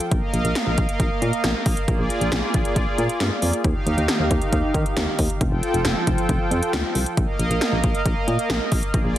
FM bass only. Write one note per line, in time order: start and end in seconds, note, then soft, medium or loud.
0.11 0.21 A#1 loud
0.34 0.43 A#1 loud
0.45 0.55 A#1 loud
0.67 0.77 A#1 loud
0.78 0.88 A#1 loud
1.00 1.10 A#1 loud
1.22 1.32 A#2 loud
1.44 1.54 A#1 loud
1.66 1.76 A#1 loud
1.88 1.98 A#1 loud
1.99 2.09 A#1 loud
2.21 2.31 A#1 loud
2.32 2.42 A#1 loud
2.54 2.64 A#1 medium
2.76 2.86 A#1 loud
2.98 3.08 A#2 loud
3.20 3.30 G2 loud
3.42 3.52 F2 medium
3.64 3.74 D#2 loud
3.86 3.96 D#2 loud
3.98 4.07 D#2 medium
4.20 4.30 D#2 loud
4.31 4.41 D#2 loud
4.53 4.63 D#2 loud
4.74 4.84 D#3 loud
4.97 5.07 D#2 loud
5.19 5.29 D#2 loud
5.41 5.51 F1 loud
5.52 5.62 F1 loud
5.74 5.84 F1 loud
5.85 5.95 F1 loud
6.07 6.17 F1 loud
6.29 6.39 F1 loud
6.51 6.61 F2 loud
6.73 6.83 D2 medium
6.95 7.05 C2 loud
7.17 7.27 A#1 loud
7.39 7.49 A#1 loud
7.50 7.60 A#1 loud
7.72 7.82 A#1 loud
7.84 7.94 A#1 loud
8.06 8.16 A#1 loud
8.28 8.38 A#2 loud
8.50 8.60 A#1 loud
8.72 8.82 A#1 loud
8.94 9.04 A#1 loud
9.05 9.15 A#1 loud